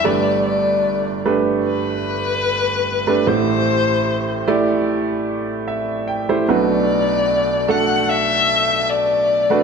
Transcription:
<<
  \new Staff \with { instrumentName = "Violin" } { \time 4/4 \key g \major \tempo 4 = 75 d''8 d''4 r8 b'2 | c''4. r2 r8 | d''4. fis''8 e''4 d''4 | }
  \new Staff \with { instrumentName = "Upright piano" } { \time 4/4 \key g \major << { r1 | r2. e''8 g''8 | r1 | } \\ { <a d' g' b'>4~ <a d' g' b'>16 r16 <a d' g' b'>4.~ <a d' g' b'>16 r8 <a d' g' b'>16 | <a e' g' c''>4~ <a e' g' c''>16 r16 <a e' g' d''>4.~ <a e' g' d''>16 r8 <a e' g' c''>16 | <a d' fis' b'>4~ <a d' fis' b'>16 r16 <a d' fis' a'>4.~ <a d' fis' a'>16 r8 <a d' fis' b'>16 | } >> }
  \new Staff \with { instrumentName = "Upright piano" } { \clef bass \time 4/4 \key g \major <g,, g,>1 | <a,, a,>1 | <b,, b,>1 | }
>>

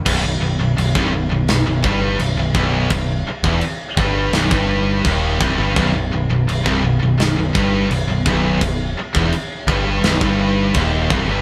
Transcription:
<<
  \new Staff \with { instrumentName = "Distorted electric guitar" } { \clef bass \time 4/4 \tempo 4 = 84 b,,16 b,,16 b,,16 b,,16 b,,16 c,16 b,,16 b,,16 b,,16 b,,16 g,8 b,,16 b,,16 b,,8 | b,,8 r16 e,16 r8 g,8 b,,16 g,8. dis,8 c,16 g,16 | b,,16 b,,16 b,,16 b,,16 b,,16 c,16 b,,16 b,,16 b,,16 b,,16 g,8 b,,16 b,,16 b,,8 | b,,8 r16 e,16 r8 g,8 b,,16 g,8. dis,8 c,16 g,16 | }
  \new Staff \with { instrumentName = "Distorted electric guitar" } { \clef bass \time 4/4 b,,16 b,,16 b,,16 b,,16 b,,16 c,16 b,,16 b,,16 b,,16 b,,16 g,8 b,,16 b,,16 b,,8 | b,,8 r16 e,16 r8 g,8 b,,16 g,8. dis,8 c,16 g,16 | b,,16 b,,16 b,,16 b,,16 b,,16 c,16 b,,16 b,,16 b,,16 b,,16 g,8 b,,16 b,,16 b,,8 | b,,8 r16 e,16 r8 g,8 b,,16 g,8. dis,8 c,16 g,16 | }
  \new Staff \with { instrumentName = "Distorted electric guitar" } { \clef bass \time 4/4 b,,16 b,,16 b,,16 b,,16 b,,16 c,16 b,,16 b,,16 b,,16 b,,16 g,8 b,,16 b,,16 b,,8 | b,,8 r16 e,16 r8 g,8 b,,16 g,8. dis,8 c,16 g,16 | b,,16 b,,16 b,,16 b,,16 b,,16 c,16 b,,16 b,,16 b,,16 b,,16 g,8 b,,16 b,,16 b,,8 | b,,8 r16 e,16 r8 g,8 b,,16 g,8. dis,8 c,16 g,16 | }
  \new Staff \with { instrumentName = "Picked electric bass" } { \clef bass \time 4/4 b,,,16 b,,,16 b,,,16 b,,,16 b,,,16 c,,16 b,,,16 b,,,16 b,,,16 b,,,16 g,,8 b,,,16 b,,,16 b,,,8 | b,,,8 r16 e,,16 r8 g,,8 b,,,16 g,,8. dis,,8 c,,16 g,,16 | b,,,16 b,,,16 b,,,16 b,,,16 b,,,16 c,,16 b,,,16 b,,,16 b,,,16 b,,,16 g,,8 b,,,16 b,,,16 b,,,8 | b,,,8 r16 e,,16 r8 g,,8 b,,,16 g,,8. dis,,8 c,,16 g,,16 | }
  \new DrumStaff \with { instrumentName = "Drums" } \drummode { \time 4/4 <cymc bd>4 cymc16 bd8. <cymc sn>8 bd8 cymc8 bd8 | <cymc bd>8. bd16 cymc8 bd8 <cymc sn>16 bd8. <cymc bd>8 bd8 | <cymc bd>4 cymc16 bd8. <cymc sn>8 bd8 cymc8 bd8 | <cymc bd>8. bd16 cymc8 bd8 <cymc sn>16 bd8. <cymc bd>8 bd8 | }
>>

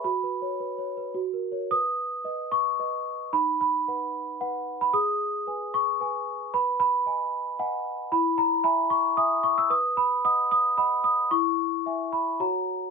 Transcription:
\new Staff \with { instrumentName = "Celesta" } { \time 3/4 \key b \major \tempo 4 = 112 << { b''2 r4 | dis'''4. cis'''4. | b''8 b''4. fis''8. b''16 | dis'''4. cis'''4. |
b''8 b''4. fis''4 | b''8 ais''8 b''8 cis'''8 dis'''8 cis'''16 e'''16 | dis'''8 b''8 dis'''8 dis'''8 b''8 dis'''8 | cis'''4. b''8 ais''4 | } \\ { \tuplet 3/2 { fis'8 b'8 cis''8 b'8 cis''8 b'8 fis'8 ais'8 <ais' cis''>8 } | b'4 <b' dis''>4 <b' dis''>4 | dis'4 <b' fis''>4 b'4 | gis'4 <b' gis''>4 <b' gis''>4 |
b'4 <dis'' gis''>4 <dis'' gis''>4 | e'4 <e'' gis''>4 <e'' gis''>4 | b'4 <dis'' fis''>4 <dis'' fis''>4 | e'4 <e'' gis''>4 <fis' cis'' fis''>4 | } >> }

